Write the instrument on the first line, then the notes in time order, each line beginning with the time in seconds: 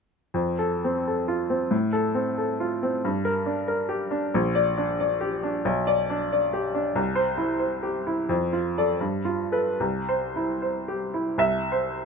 grand piano
0.34 F2
0.59 A4
0.84 C4
1.07 A4
1.28 F4
1.50 C4
1.71 A2
1.93 A4
2.15 C4
2.38 A4
2.60 F4
2.83 C4
3.05 G2
3.25 A#4
3.46 D4
3.68 A#4
3.89 G4
4.11 D4
4.34 A#1
4.55 D5
4.78 D4
5.00 D5
5.21 G4
5.43 D4
5.65 B1
5.87 D5
6.10 D4
6.32 D5
6.53 G4
6.75 D4
6.95 C2
7.15 C5
7.37 E4
7.59 C5
7.83 G4
8.07 E4
8.29 F2
8.53 F4
8.78 A4 D5
9.01 G2
9.25 F4
9.52 A4 B4
9.80 C2
10.09 C5
10.36 E4
10.62 C5
10.88 G4
11.14 E4
11.38 C2 E5
11.72 C5